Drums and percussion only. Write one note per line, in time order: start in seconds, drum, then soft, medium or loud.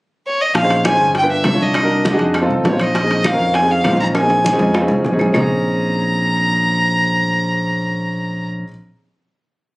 0.55 high bongo medium
0.55 high conga soft
0.55 high timbale medium
0.70 high bongo soft
0.70 high conga soft
0.70 high timbale medium
0.85 high bongo medium
0.85 high conga medium
0.85 high timbale medium
0.85 low timbale soft
0.85 claves medium
1.15 high bongo medium
1.15 high conga soft
1.15 high timbale medium
1.30 high bongo soft
1.30 high conga soft
1.44 high bongo soft
1.44 low bongo medium
1.44 high conga medium
1.44 high timbale medium
1.44 low timbale medium
1.44 claves medium
1.60 high bongo soft
1.60 high conga medium
1.74 high bongo medium
1.74 high conga soft
1.74 high timbale medium
1.74 claves medium
1.90 high bongo soft
1.90 high conga soft
2.05 high bongo medium
2.05 high conga medium
2.05 high timbale medium
2.05 low timbale medium
2.19 high conga soft
2.19 high timbale medium
2.34 high bongo medium
2.34 high conga soft
2.34 high timbale medium
2.34 claves medium
2.50 high bongo soft
2.50 high conga soft
2.65 high bongo soft
2.65 low bongo medium
2.65 high conga medium
2.65 high timbale medium
2.65 low timbale medium
2.80 high bongo soft
2.80 high conga medium
2.80 high timbale medium
2.80 claves medium
2.95 high bongo medium
2.95 high conga soft
2.95 high timbale medium
3.10 high bongo soft
3.10 high conga soft
3.10 high timbale medium
3.24 high bongo medium
3.24 high conga medium
3.24 high timbale medium
3.24 low timbale soft
3.24 claves medium
3.54 high bongo medium
3.54 high conga soft
3.54 high timbale medium
3.69 high bongo soft
3.69 high conga soft
3.84 high bongo soft
3.84 low bongo medium
3.84 high conga medium
3.84 high timbale medium
3.84 low timbale medium
3.84 claves medium
3.99 high bongo soft
3.99 high conga medium
4.15 high bongo medium
4.15 high conga soft
4.15 high timbale medium
4.15 claves medium
4.29 high bongo soft
4.29 high conga soft
4.29 high timbale medium
4.45 high bongo medium
4.45 high conga medium
4.59 high conga soft
4.59 low timbale medium
4.74 high bongo medium
4.74 high conga soft
4.74 low timbale medium
4.74 claves medium
4.88 high bongo soft
4.88 high conga soft
4.88 low timbale medium
5.05 high bongo soft
5.05 low bongo medium
5.05 high conga medium
5.19 high bongo soft
5.19 high conga medium
5.19 low timbale medium
5.19 claves medium
5.34 low bongo medium
5.34 low conga medium
5.34 low timbale medium
5.34 claves medium